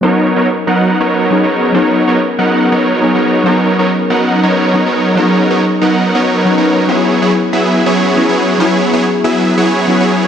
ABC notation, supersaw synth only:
X:1
M:4/4
L:1/16
Q:"Swing 16ths" 1/4=140
K:B
V:1 name="Supersaw synth"
[F,B,DAc]3 [F,B,DAc] z2 [F,B,DAf]3 [F,B,DAc]4 [F,B,DAc]3 | [F,B,DAc]3 [F,B,DAc] z2 [F,B,DAf]3 [F,B,DAc]4 [F,B,DAc]3 | [F,B,DAc]3 [F,B,DAc] z2 [F,B,DAf]3 [F,B,DAc]4 [F,B,DAc]3 | [F,B,DAc]3 [F,B,DAc] z2 [F,B,DAf]3 [F,B,DAc]4 [F,B,DAc]3 |
[F,B,EGc]3 [F,B,EGc] z2 [F,B,EGe]3 [F,B,EGc]4 [F,B,EGc]3 | [F,B,EGc]3 [F,B,EGc] z2 [F,B,EGe]3 [F,B,EGc]4 [F,B,EGc]3 |]